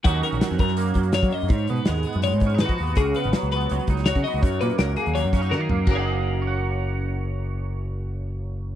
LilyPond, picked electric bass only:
\new Staff \with { instrumentName = "Picked electric bass" } { \clef bass \time 4/4 \key fis \major \tempo 4 = 165 dis,8 r16 ais,,16 r16 eis,16 fis,4 fis,8. fis16 r16 fis,16 | gis,8 b,16 r16 dis,8 r16 fis,8 gis,8. eis8 dis,8 | cis,8 r16 gis,,16 r16 cis,8. cis,16 r16 cis,8. cis16 r16 cis,16 | fis,8 ais,16 r16 cis,8 r16 dis,8 fis,8. dis8 fis,8 |
fis,,1~ | fis,,1 | }